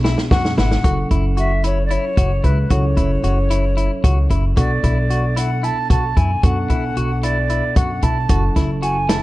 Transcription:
0.00 0.14 B1 medium
0.00 0.80 B2 medium
0.00 0.80 B3 medium
0.00 0.80 D4 medium
0.00 0.81 G#4 medium
0.04 0.18 E4 medium
0.04 snare medium
0.18 snare medium
0.31 0.52 F#2 medium
0.31 0.45 F#4 medium
0.31 0.56 F#5 loud
0.31 kick medium
0.31 snare medium
0.45 snare medium
0.57 0.79 G#1 medium
0.57 0.71 E4 medium
0.57 1.07 F#5 medium
0.57 snare medium
0.71 snare medium
0.83 1.05 F#1 medium
0.83 2.66 F#3 medium
0.83 2.67 C#4 soft
0.83 2.67 E4 soft
0.83 0.98 F#4 medium
0.83 2.67 A4 medium
0.83 kick medium
0.83 closed hi-hat medium
1.11 1.95 F#1 medium
1.11 1.25 E4 medium
1.11 kick medium
1.11 closed hi-hat soft
1.37 1.51 F#4 medium
1.37 1.63 E5 medium
1.37 closed hi-hat soft
1.64 1.78 E4 medium
1.64 1.83 C#5 medium
1.64 closed hi-hat medium
1.85 1.93 D5 medium
1.91 2.04 E4 medium
1.91 2.46 C#5 medium
1.91 closed hi-hat soft
2.17 2.38 F#1 medium
2.17 2.31 F#4 medium
2.17 kick medium
2.17 closed hi-hat medium
2.44 2.65 C#2 medium
2.44 2.58 E4 medium
2.44 2.73 B4 medium
2.44 kick medium
2.44 closed hi-hat soft
2.70 2.92 C#2 medium
2.70 4.53 F#3 soft
2.70 4.53 C#4 soft
2.70 4.53 E4 soft
2.70 2.84 F#4 medium
2.70 4.54 A4 medium
2.70 4.31 C#5 medium
2.70 kick medium
2.70 closed hi-hat medium
2.97 3.18 F#1 medium
2.97 3.11 E4 medium
2.97 kick medium
2.97 closed hi-hat medium
3.23 3.87 F#1 medium
3.23 3.37 F#4 medium
3.23 closed hi-hat medium
3.50 3.64 E4 medium
3.50 closed hi-hat medium
3.77 3.91 E4 medium
3.77 closed hi-hat medium
4.04 4.25 C#2 medium
4.04 4.18 F#4 medium
4.04 kick medium
4.04 closed hi-hat medium
4.30 4.51 F#1 medium
4.30 4.44 E4 medium
4.30 kick medium
4.30 closed hi-hat medium
4.56 4.78 B1 medium
4.56 6.39 B2 medium
4.56 6.39 B3 soft
4.56 6.40 D4 soft
4.56 4.71 F#4 medium
4.56 6.40 A4 medium
4.56 5.39 D5 medium
4.56 kick medium
4.56 closed hi-hat medium
4.84 5.68 B1 medium
4.84 4.97 E4 medium
4.84 kick medium
4.84 closed hi-hat medium
5.10 5.24 F#4 medium
5.10 closed hi-hat soft
5.36 5.50 E4 medium
5.36 5.65 F#5 medium
5.36 closed hi-hat medium
5.63 5.77 E4 medium
5.63 5.90 A5 medium
5.63 closed hi-hat soft
5.90 6.11 B1 medium
5.90 6.04 F#4 medium
5.90 6.18 A5 medium
5.90 kick medium
5.90 closed hi-hat medium
6.16 6.38 F#2 medium
6.16 6.30 E4 medium
6.16 6.45 G#5 medium
6.16 kick medium
6.16 closed hi-hat soft
6.43 6.64 F#2 medium
6.43 8.26 B2 soft
6.43 8.26 B3 soft
6.43 8.26 D4 soft
6.43 6.57 F#4 medium
6.43 8.27 A4 medium
6.43 7.25 F#5 medium
6.43 kick medium
6.43 closed hi-hat medium
6.70 6.91 B1 medium
6.70 6.83 E4 medium
6.70 kick medium
6.70 closed hi-hat medium
6.97 7.60 B1 medium
6.97 7.11 F#4 medium
6.97 closed hi-hat soft
7.23 7.37 E4 medium
7.23 7.77 D5 medium
7.23 closed hi-hat medium
7.50 7.64 E4 medium
7.50 closed hi-hat soft
7.75 7.97 F#2 medium
7.75 7.90 F#4 medium
7.75 8.04 F#5 medium
7.75 kick medium
7.75 closed hi-hat medium
8.02 8.24 B1 medium
8.02 8.17 E4 medium
8.02 8.56 A5 medium
8.02 kick medium
8.02 closed hi-hat medium
8.29 8.51 F#1 medium
8.29 9.23 F#3 soft
8.29 9.23 C#4 soft
8.29 9.23 E4 soft
8.29 8.43 F#4 medium
8.29 9.23 A4 medium
8.29 kick medium
8.29 closed hi-hat medium
8.56 9.23 F#1 medium
8.56 8.70 E4 medium
8.56 kick medium
8.56 snare soft
8.56 closed hi-hat medium
8.82 8.96 F#4 medium
8.82 9.10 G#5 medium
8.82 closed hi-hat medium
9.09 9.23 E4 medium
9.09 9.23 A5 medium
9.09 snare medium
9.09 closed hi-hat medium

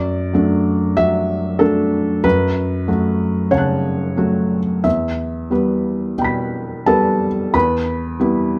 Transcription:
0.00 0.32 F#2 medium
0.00 0.97 D5 medium
0.33 0.94 F#3 soft
0.33 0.94 A3 soft
0.33 0.94 D4 soft
0.97 1.58 F#3 soft
0.97 1.60 E5 medium
1.59 2.20 F#3 soft
1.59 2.20 A3 soft
1.59 2.20 D4 medium
1.59 2.24 A4 medium
2.24 2.87 F#2 medium
2.24 3.53 B4 medium
2.88 3.48 F#3 soft
2.88 3.48 A3 soft
2.88 3.49 F#4 soft
3.51 4.57 C#3 soft
3.51 4.84 C#5 medium
3.51 4.80 F#5 soft
3.51 4.82 A5 soft
3.58 4.83 F#6 soft
4.17 4.80 F#3 soft
4.17 4.81 A3 soft
4.17 4.81 F#4 soft
4.84 5.50 E2 soft
4.84 6.87 E5 medium
5.51 6.14 G3 soft
5.51 6.15 B3 soft
5.51 6.15 B4 soft
6.18 7.28 B2 soft
6.18 7.50 G5 soft
6.18 7.52 B5 soft
6.24 7.53 B6 soft
6.86 7.50 G3 soft
6.86 7.50 B3 soft
6.86 7.50 A4 medium
6.86 7.50 B4 soft
6.86 7.54 A5 medium
7.54 8.17 E2 medium
7.54 8.59 B4 medium
7.54 8.59 B5 medium
8.20 8.59 G3 soft
8.20 8.59 B3 soft
8.20 8.59 E4 soft

